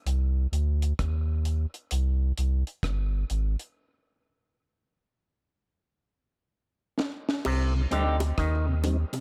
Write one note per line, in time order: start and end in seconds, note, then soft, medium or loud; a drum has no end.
0.06 0.47 C2 loud
0.06 closed hi-hat medium
0.52 0.93 D2 medium
0.52 closed hi-hat medium
0.82 closed hi-hat soft
0.99 1.66 D#2 medium
0.99 kick medium
0.99 cross-stick medium
0.99 closed hi-hat medium
1.45 closed hi-hat medium
1.74 closed hi-hat medium
1.91 2.33 C2 loud
1.91 closed hi-hat loud
2.38 2.64 C2 medium
2.38 closed hi-hat medium
2.67 closed hi-hat soft
2.83 3.25 G1 medium
2.83 kick medium
2.83 cross-stick medium
2.83 closed hi-hat medium
3.30 3.56 G#1 loud
3.30 closed hi-hat medium
3.59 closed hi-hat soft
7.00 snare medium
7.29 snare medium
7.45 7.87 C2 medium
7.45 7.73 C3 medium
7.45 crash medium
7.45 high bongo medium
7.75 7.82 C3 medium
7.91 8.33 D2 medium
7.91 8.20 D3 medium
7.91 8.04 G3 medium
7.91 8.15 C4 medium
7.91 8.05 C4 medium
7.91 8.15 D#4 medium
7.91 8.05 D#4 medium
7.91 8.16 G4 loud
7.91 closed hi-hat medium
8.20 closed hi-hat medium
8.20 high bongo medium
8.38 9.05 D#2 medium
8.38 8.66 D#3 medium
8.38 kick medium
8.38 cross-stick loud
8.38 closed hi-hat medium
8.68 8.75 C3 medium
8.84 8.97 G3 medium
8.84 8.97 C4 medium
8.84 8.97 D#4 medium
8.84 closed hi-hat medium
8.84 low bongo medium
9.13 9.20 C3 medium
9.13 closed hi-hat medium
9.13 high bongo medium